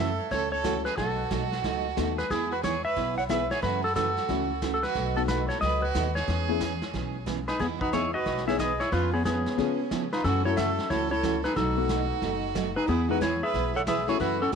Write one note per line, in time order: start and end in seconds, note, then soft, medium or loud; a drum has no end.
0.00 0.18 F#2 medium
0.00 0.29 A4 medium
0.00 0.32 E5 medium
0.31 0.84 C#2 medium
0.31 0.53 C#3 medium
0.31 0.53 E3 medium
0.31 0.53 A3 medium
0.31 0.53 C#4 medium
0.31 0.53 F#4 medium
0.31 0.51 A4 medium
0.31 0.51 C#5 medium
0.31 brush sweep soft
0.31 kick soft
0.31 snare soft
0.52 0.83 A4 medium
0.52 0.85 C#5 medium
0.64 0.76 C#3 medium
0.64 0.76 E3 medium
0.64 0.83 A3 medium
0.64 0.76 A3 medium
0.64 0.83 C#4 medium
0.64 0.76 C#4 medium
0.64 0.83 E4 medium
0.64 0.83 F#4 medium
0.64 0.76 F#4 medium
0.64 kick soft
0.64 snare medium
0.64 hi-hat pedal medium
0.85 0.97 G#4 medium
0.85 0.97 B4 medium
0.85 snare soft
0.97 1.24 B1 medium
0.97 1.19 B2 medium
0.97 1.19 F#3 medium
0.97 1.19 A3 medium
0.97 1.19 D#4 medium
0.97 2.14 F#4 medium
0.97 1.20 F#4 medium
0.97 2.22 A4 medium
0.97 brush sweep medium
0.97 kick soft
0.97 snare soft
1.31 1.59 B1 medium
1.31 1.42 B2 medium
1.31 1.42 F#3 medium
1.31 1.42 A3 medium
1.31 1.42 D#4 medium
1.31 1.43 F#4 medium
1.31 kick soft
1.31 snare medium
1.31 hi-hat pedal soft
1.52 snare soft
1.64 1.92 C#2 medium
1.64 1.85 B2 soft
1.64 1.86 F#3 medium
1.64 1.86 A3 medium
1.64 1.86 D#4 medium
1.64 1.86 F#4 medium
1.64 brush sweep medium
1.64 kick soft
1.64 snare soft
1.97 2.25 D#2 medium
1.97 2.09 B2 medium
1.97 2.09 F#3 medium
1.97 2.16 A3 medium
1.97 2.09 A3 medium
1.97 2.16 B3 medium
1.97 2.16 D#4 medium
1.97 2.09 D#4 medium
1.97 2.16 F#4 medium
1.97 2.09 F#4 medium
1.97 kick soft
1.97 snare medium
1.97 hi-hat pedal medium
2.18 2.29 G#4 medium
2.18 2.31 B4 medium
2.18 snare soft
2.30 2.83 E2 medium
2.30 2.52 E3 medium
2.30 2.52 B3 medium
2.30 2.53 E4 medium
2.30 2.52 E4 medium
2.30 2.52 G#4 medium
2.30 brush sweep medium
2.30 kick soft
2.30 snare soft
2.51 2.63 F#4 medium
2.51 2.64 B4 medium
2.63 2.75 E3 medium
2.63 2.75 B3 medium
2.63 2.75 E4 medium
2.63 2.86 G#4 medium
2.63 2.75 G#4 medium
2.63 2.84 C#5 medium
2.63 kick soft
2.63 snare medium
2.63 hi-hat pedal medium
2.85 3.18 B4 medium
2.85 3.17 E5 loud
2.96 3.50 B1 medium
2.96 3.18 E3 medium
2.96 3.18 B3 medium
2.96 3.18 E4 medium
2.96 3.18 G#4 medium
2.96 brush sweep soft
2.96 kick soft
2.96 snare soft
3.18 3.24 C#5 medium
3.18 3.23 F#5 loud
3.29 3.41 E3 medium
3.29 3.48 G#3 medium
3.29 3.49 B3 medium
3.29 3.41 B3 medium
3.29 3.41 E4 medium
3.29 3.49 E4 soft
3.29 3.41 G#4 medium
3.29 3.49 G#4 medium
3.29 3.49 B4 medium
3.29 3.52 E5 medium
3.29 kick soft
3.29 snare medium
3.29 hi-hat pedal medium
3.51 3.65 G#4 medium
3.51 3.62 C#5 medium
3.51 snare soft
3.62 4.16 F#2 medium
3.62 3.84 C#3 medium
3.62 3.84 E3 medium
3.62 3.84 A3 medium
3.62 3.84 C#4 medium
3.62 3.84 F#4 medium
3.62 3.84 B4 medium
3.62 brush sweep soft
3.62 kick soft
3.62 snare soft
3.84 3.95 F#4 medium
3.84 3.95 A4 medium
3.95 4.07 C#3 medium
3.95 4.08 E3 medium
3.95 4.08 A3 medium
3.95 4.08 C#4 medium
3.95 4.70 F#4 medium
3.95 4.08 F#4 medium
3.95 4.70 A4 medium
3.95 kick soft
3.95 snare medium
3.95 hi-hat pedal medium
4.17 snare soft
4.28 4.82 C#2 medium
4.28 4.50 C#3 medium
4.28 4.51 E3 medium
4.28 4.48 A3 medium
4.28 4.51 A3 medium
4.28 4.48 C#4 medium
4.28 4.51 C#4 medium
4.28 4.48 E4 medium
4.28 4.48 F#4 medium
4.28 4.51 F#4 medium
4.28 brush sweep soft
4.28 kick soft
4.28 snare soft
4.62 4.74 C#3 medium
4.62 4.74 E3 medium
4.62 4.74 A3 medium
4.62 4.74 C#4 medium
4.62 4.74 F#4 medium
4.62 kick soft
4.62 snare medium
4.62 hi-hat pedal medium
4.74 4.82 F#4 medium
4.74 4.83 A4 medium
4.83 5.14 F#4 medium
4.83 5.17 B4 medium
4.83 snare soft
4.94 5.48 B1 medium
4.94 5.16 B2 medium
4.94 5.17 F#3 medium
4.94 5.17 A3 medium
4.94 5.17 D#4 medium
4.94 5.17 F#4 medium
4.94 brush sweep soft
4.94 kick soft
4.94 snare soft
5.16 5.59 A3 medium
5.16 5.59 B3 medium
5.16 5.59 D#4 medium
5.16 5.22 F#4 medium
5.16 5.60 F#4 medium
5.16 5.22 A4 medium
5.28 5.40 B2 medium
5.28 5.40 F#3 medium
5.28 5.40 A3 medium
5.28 5.40 D#4 medium
5.28 5.48 F#4 medium
5.28 5.40 F#4 medium
5.28 5.48 B4 medium
5.28 kick soft
5.28 snare medium
5.28 hi-hat pedal medium
5.49 5.63 A4 medium
5.49 5.60 C#5 medium
5.49 snare soft
5.61 5.90 C#2 medium
5.61 5.83 B2 medium
5.61 5.83 F#3 medium
5.61 5.83 A3 medium
5.61 5.83 D#4 medium
5.61 5.84 F#4 medium
5.61 5.82 B4 medium
5.61 5.83 D#5 loud
5.61 brush sweep soft
5.61 kick soft
5.61 snare soft
5.82 6.14 F#4 medium
5.82 6.17 B4 medium
5.95 6.23 D#2 medium
5.95 6.06 B2 medium
5.95 6.06 F#3 medium
5.95 6.06 A3 medium
5.95 6.06 D#4 medium
5.95 6.07 F#4 medium
5.95 kick soft
5.95 snare medium
5.95 hi-hat pedal medium
6.15 7.23 G#4 medium
6.15 7.23 C#5 medium
6.15 snare soft
6.27 6.81 E2 loud
6.27 6.49 E3 medium
6.27 6.49 B3 medium
6.27 6.49 C#4 medium
6.27 6.49 G#4 medium
6.27 brush sweep soft
6.27 kick soft
6.27 snare soft
6.49 6.60 B3 medium
6.49 6.60 C#4 medium
6.49 6.60 E4 medium
6.49 6.60 G#4 medium
6.60 6.72 E3 medium
6.60 6.72 B3 medium
6.60 6.73 C#4 medium
6.60 6.73 G#4 medium
6.60 kick soft
6.60 snare medium
6.60 hi-hat pedal medium
6.82 snare soft
6.93 7.47 B1 medium
6.93 7.15 E3 medium
6.93 7.15 B3 medium
6.93 7.15 C#4 medium
6.93 7.16 G#4 medium
6.93 brush sweep soft
6.93 kick soft
6.93 snare soft
7.26 7.38 E3 medium
7.26 7.38 B3 medium
7.26 7.38 C#4 medium
7.26 7.39 G#4 medium
7.26 kick soft
7.26 snare medium
7.26 hi-hat pedal medium
7.48 7.60 D#4 medium
7.48 7.59 G#4 medium
7.48 7.59 B4 medium
7.48 snare soft
7.59 8.13 E2 medium
7.59 7.81 E3 medium
7.59 7.81 B3 medium
7.59 7.67 B3 medium
7.59 7.81 D#4 medium
7.59 7.80 E4 medium
7.59 7.81 G#4 medium
7.59 7.66 G#4 medium
7.59 brush sweep soft
7.59 kick soft
7.59 snare soft
7.81 7.93 D#4 medium
7.81 7.95 F#4 medium
7.81 7.93 B4 medium
7.81 kick medium
7.93 8.04 E3 medium
7.93 8.12 B3 medium
7.93 8.05 B3 medium
7.93 8.12 D#4 soft
7.93 8.05 D#4 medium
7.93 8.12 E4 soft
7.93 8.13 E4 medium
7.93 8.14 G#4 medium
7.93 8.12 G#4 medium
7.93 8.05 G#4 medium
7.93 8.14 C#5 medium
7.93 kick soft
7.93 snare medium
7.93 hi-hat pedal medium
8.14 8.45 F#4 medium
8.14 8.45 B4 medium
8.14 8.47 D#5 medium
8.26 8.79 B1 medium
8.26 8.47 E3 medium
8.26 8.48 B3 medium
8.26 8.48 D#4 medium
8.26 8.48 G#4 medium
8.26 brush sweep soft
8.26 kick soft
8.26 snare soft
8.37 snare soft
8.47 8.58 B3 medium
8.47 8.58 D#4 medium
8.47 8.58 E4 medium
8.47 8.58 G#4 medium
8.47 8.59 G#4 medium
8.47 8.59 C#5 medium
8.47 8.60 E5 medium
8.47 snare soft
8.58 8.70 E3 medium
8.58 8.71 B3 medium
8.58 8.71 D#4 medium
8.58 8.71 G#4 medium
8.58 8.80 G#4 medium
8.58 8.79 B4 medium
8.58 8.81 D#5 medium
8.58 kick soft
8.58 snare medium
8.58 hi-hat pedal medium
8.80 8.92 E4 medium
8.80 8.94 G#4 medium
8.80 8.92 C#5 medium
8.80 snare soft
8.92 9.45 F2 medium
8.92 9.14 F3 medium
8.92 9.14 B3 medium
8.92 9.14 C#4 medium
8.92 9.13 F4 medium
8.92 9.12 F4 medium
8.92 9.14 G#4 medium
8.92 9.13 B4 medium
8.92 brush sweep soft
8.92 kick soft
8.92 snare soft
9.13 9.25 B3 medium
9.13 9.25 C#4 medium
9.13 9.24 G#4 medium
9.25 9.37 F3 medium
9.25 9.37 B3 medium
9.25 10.09 B3 medium
9.25 10.09 C#4 medium
9.25 9.37 C#4 medium
9.25 10.15 G#4 medium
9.25 9.37 G#4 medium
9.25 kick soft
9.25 snare medium
9.25 hi-hat pedal medium
9.46 snare soft
9.57 10.11 C#3 medium
9.57 9.80 F3 medium
9.57 9.77 B3 medium
9.57 9.80 B3 soft
9.57 9.77 C#4 medium
9.57 9.80 C#4 medium
9.57 9.77 F4 medium
9.57 9.77 G#4 medium
9.57 9.80 G#4 medium
9.57 brush sweep soft
9.57 kick soft
9.57 snare soft
9.91 10.03 F3 medium
9.91 10.03 B3 medium
9.91 10.03 C#4 medium
9.91 10.03 G#4 medium
9.91 kick soft
9.91 snare medium
9.91 hi-hat pedal medium
10.12 10.24 D#4 medium
10.12 10.26 F4 medium
10.12 10.25 B4 medium
10.12 snare soft
10.24 10.77 F#2 medium
10.24 10.46 C#3 medium
10.24 10.46 E3 medium
10.24 10.46 A3 medium
10.24 10.44 C#4 medium
10.24 10.46 C#4 medium
10.24 10.45 F#4 medium
10.24 10.46 F#4 medium
10.24 10.45 A4 medium
10.24 brush sweep medium
10.24 kick soft
10.24 snare soft
10.45 10.88 A3 medium
10.45 10.88 C#4 medium
10.45 10.88 E4 medium
10.45 10.57 E4 medium
10.45 10.88 F#4 medium
10.45 10.58 A4 medium
10.45 10.58 C#5 medium
10.57 10.69 C#3 medium
10.57 10.69 E3 medium
10.57 10.69 A3 medium
10.57 10.69 C#4 medium
10.57 10.69 F#4 medium
10.57 10.88 A4 medium
10.57 10.91 A4 medium
10.57 10.91 E5 medium
10.57 kick soft
10.57 snare medium
10.57 hi-hat pedal medium
10.79 snare soft
10.90 11.43 C#2 medium
10.90 11.12 C#3 medium
10.90 11.12 E3 soft
10.90 11.12 A3 medium
10.90 11.12 C#4 medium
10.90 11.10 E4 medium
10.90 11.12 F#4 medium
10.90 11.11 A4 medium
10.90 11.10 C#5 medium
10.90 brush sweep soft
10.90 kick soft
10.90 snare soft
11.11 11.42 E4 medium
11.11 11.43 A4 medium
11.11 11.44 C#5 loud
11.23 11.35 C#3 medium
11.23 11.35 E3 medium
11.23 11.35 A3 medium
11.23 11.35 C#4 medium
11.23 11.35 F#4 medium
11.23 kick soft
11.23 snare medium
11.23 hi-hat pedal medium
11.44 11.56 D#4 medium
11.44 11.56 G#4 medium
11.44 11.55 B4 loud
11.44 snare soft
11.56 12.09 B1 medium
11.56 11.78 B2 soft
11.56 11.78 F#3 medium
11.56 11.78 A3 medium
11.56 11.78 D#4 medium
11.56 12.73 D#4 medium
11.56 11.78 F#4 medium
11.56 12.73 F#4 medium
11.56 12.76 A4 medium
11.56 brush sweep medium
11.56 kick soft
11.56 snare soft
11.77 12.20 A3 medium
11.77 12.20 B3 medium
11.77 12.20 D#4 medium
11.77 12.20 F#4 medium
11.89 12.01 B2 medium
11.89 12.01 F#3 medium
11.89 12.01 A3 medium
11.89 12.01 D#4 medium
11.89 12.01 F#4 medium
11.89 kick soft
11.89 snare medium
11.89 hi-hat pedal medium
12.22 12.75 F#1 medium
12.22 12.44 B2 soft
12.22 12.44 F#3 medium
12.22 12.44 A3 medium
12.22 12.44 D#4 medium
12.22 12.44 F#4 medium
12.22 brush sweep soft
12.22 kick soft
12.22 snare soft
12.55 12.67 B2 medium
12.55 12.67 F#3 medium
12.55 12.67 A3 medium
12.55 12.67 D#4 medium
12.55 12.67 F#4 medium
12.55 kick soft
12.55 snare medium
12.55 hi-hat pedal medium
12.76 12.88 D#4 medium
12.76 12.88 G#4 medium
12.76 12.88 B4 medium
12.87 13.41 E2 medium
12.87 13.09 E3 medium
12.87 13.09 B3 medium
12.87 13.08 B3 medium
12.87 13.09 E4 medium
12.87 13.11 E4 medium
12.87 13.10 G#4 medium
12.87 brush sweep medium
12.87 kick soft
12.87 snare soft
13.09 13.20 G#3 medium
13.09 13.20 B3 medium
13.09 13.21 D#4 medium
13.09 13.20 E4 medium
13.09 13.23 F#4 medium
13.09 13.20 G#4 medium
13.09 13.22 B4 loud
13.21 13.33 E3 medium
13.21 13.33 B3 medium
13.21 13.33 E4 medium
13.21 13.42 E4 medium
13.21 13.42 G#4 medium
13.21 13.33 G#4 medium
13.21 13.43 C#5 loud
13.21 kick soft
13.21 snare medium
13.21 hi-hat pedal medium
13.42 13.73 G#4 medium
13.42 13.73 B4 medium
13.42 13.77 E5 loud
13.54 14.07 B1 medium
13.54 13.76 E3 medium
13.54 13.76 B3 soft
13.54 13.76 E4 medium
13.54 13.76 G#4 medium
13.54 brush sweep soft
13.54 kick soft
13.54 snare soft
13.76 13.81 A4 medium
13.76 13.81 C#5 medium
13.76 13.81 F#5 loud
13.87 13.99 E3 medium
13.87 13.99 B3 medium
13.87 13.99 E4 medium
13.87 14.07 G#4 medium
13.87 13.99 G#4 medium
13.87 14.07 B4 medium
13.87 14.07 E5 medium
13.87 kick soft
13.87 snare medium
13.87 hi-hat pedal medium
14.08 14.51 A3 medium
14.08 14.51 C#4 medium
14.08 14.51 E4 medium
14.08 14.19 E4 medium
14.08 14.51 F#4 medium
14.08 14.22 G#4 medium
14.08 14.20 C#5 medium
14.08 snare soft
14.20 14.46 F#2 medium
14.20 14.41 C#3 medium
14.20 14.41 E3 medium
14.20 14.42 A3 medium
14.20 14.42 C#4 medium
14.20 14.40 E4 medium
14.20 14.42 F#4 medium
14.20 14.42 B4 medium
14.20 brush sweep soft
14.20 kick soft
14.20 snare soft
14.42 14.52 C#4 medium
14.42 14.53 F#4 medium
14.42 14.52 A4 medium